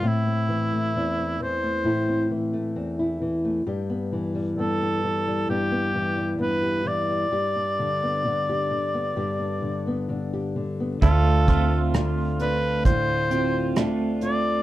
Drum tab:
HH |--------|--------|--------|xxxxxxxx|
SD |--------|--------|--------|--r---r-|
BD |--------|--------|--------|oo--o---|